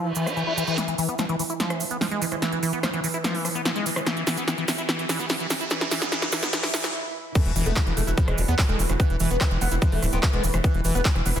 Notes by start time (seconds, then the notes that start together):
Already playing: E3, reverse cymbal
0.06 E3
0.15 E3, cabasa
0.26 E4, cross-stick, cabasa
0.37 E3, cabasa
0.47 E4
0.57 E3, cabasa
0.67 E3, cabasa
0.78 E3, snare, closed hi-hat, riser, cabasa
0.88 E3, closed hi-hat
0.98 E3, open hi-hat, cabasa
1.09 B3, closed hi-hat, cabasa
1.18 F3, cross-stick, snare, closed hi-hat, cabasa
1.29 E3, closed hi-hat
1.39 E3, open hi-hat, cabasa
1.50 E4, closed hi-hat, cabasa
1.60 F3, snare, closed hi-hat, cabasa
1.70 E3, cross-stick, closed hi-hat
1.80 F3, open hi-hat, cabasa
1.91 B3, closed hi-hat, cabasa
2.01 F3, snare, open hi-hat, cabasa
2.11 G#3, closed hi-hat
2.22 E3, open hi-hat, cabasa
2.31 E3, cross-stick, closed hi-hat, cabasa
2.42 E3, snare, closed hi-hat, cabasa
2.52 E3, closed hi-hat
2.63 E3, open hi-hat, cabasa
2.73 B3, closed hi-hat, cabasa
2.83 F3, cross-stick, snare, closed hi-hat, cabasa
2.94 E3, closed hi-hat
3.04 E3, open hi-hat, cabasa
3.14 E4, closed hi-hat, cabasa
3.24 F3, snare, closed hi-hat, cabasa
3.35 E3, open hi-hat
3.45 F3, cross-stick, open hi-hat, cabasa
3.55 B3, closed hi-hat, cabasa
3.65 F3, snare, closed hi-hat, cabasa
3.76 G#3, closed hi-hat
3.86 E3, open hi-hat, cabasa
3.96 E3, cross-stick, cabasa
4.06 E3, snare, closed hi-hat, cabasa
4.17 E3, closed hi-hat
4.27 E3, snare, open hi-hat, cabasa
4.37 B3, closed hi-hat, cabasa
4.48 E3, snare, closed hi-hat, cabasa
4.58 E3, closed hi-hat
4.68 E3, snare, open hi-hat, cabasa
4.78 E4, closed hi-hat, cabasa
4.89 E3, snare, closed hi-hat, cabasa
4.99 E3, closed hi-hat
5.09 E3, snare, open hi-hat, cabasa
5.20 B3, closed hi-hat, cabasa
5.29 E3, snare, open hi-hat, cabasa
5.40 E3, closed hi-hat
5.50 E3, snare, open hi-hat, cabasa
5.61 E4, closed hi-hat, cabasa
5.70 E3, snare, closed hi-hat, cabasa
5.81 E3, snare, closed hi-hat
5.91 E3, snare, open hi-hat, cabasa
6.01 B3, snare, cabasa
6.12 E3, snare, closed hi-hat, cabasa
6.22 E3, snare, closed hi-hat
6.32 E3, snare, open hi-hat, cabasa
6.43 B3, snare, closed hi-hat, cabasa
6.53 E3, snare, closed hi-hat, swell, cabasa
6.63 E3, snare, open hi-hat
6.74 E3, snare, open hi-hat, cabasa
6.84 E3, snare, closed hi-hat, cabasa
7.35 E3 A3, kick, closed hi-hat, crash, sub drop, cabasa
7.46 E1 B2 E3, closed hi-hat
7.56 E1 B2 E3, open hi-hat, cabasa
7.66 E1 A3 B3, closed hi-hat, cabasa
7.76 B2 F3, kick, cross-stick, clap, closed hi-hat, cabasa
7.87 E1 B2 E3, closed hi-hat
7.97 E1 E3 A3, open hi-hat, cabasa
8.07 E1 B2 E4, closed hi-hat, cabasa
8.17 B2 F3, kick, closed hi-hat, cabasa
8.28 E1 E3 G#3, cross-stick, closed hi-hat
8.38 E1 B2 F3, open hi-hat, cabasa
8.48 E2 B3, closed hi-hat, cabasa
8.59 B2 F3, kick, clap, open hi-hat, cabasa
8.69 E1 G#3 A3, closed hi-hat
8.79 E1 B2 E3, open hi-hat, cabasa
8.89 E1 B2 E3, cross-stick, closed hi-hat, cabasa
9.00 E3 B3, kick, closed hi-hat, cabasa
9.10 E1 E3, closed hi-hat
9.20 E1 E3, open hi-hat, cabasa
9.31 E1 B3, closed hi-hat, cabasa
9.41 E3 F3, kick, cross-stick, clap, closed hi-hat, cabasa
9.51 E1 E3, closed hi-hat
9.61 E1 E3 B3, open hi-hat, cabasa
9.71 E1 E3 E4, closed hi-hat, cabasa
9.82 E3 F3, kick, closed hi-hat, cabasa
9.92 E1 E3 A3, open hi-hat
10.02 D1 E3 F3, cross-stick, open hi-hat, cabasa
10.12 D1 B3 C4, closed hi-hat, cabasa
10.23 F3, kick, clap, closed hi-hat, cabasa
10.33 E1 G#3 B3, closed hi-hat
10.44 E1 E3, open hi-hat, cabasa
10.53 E1 E3, cross-stick, closed hi-hat, cabasa
10.64 E3 B3, kick, closed hi-hat, cabasa
10.74 E1 E3, closed hi-hat
10.84 E1 E3, open hi-hat, cabasa
10.95 E1 B3, closed hi-hat, cabasa
11.05 F3, kick, clap, closed hi-hat, cabasa
11.15 E1 E3, cross-stick, closed hi-hat
11.26 E1 E3 B3, open hi-hat, cabasa
11.36 E1 E3 E4, cabasa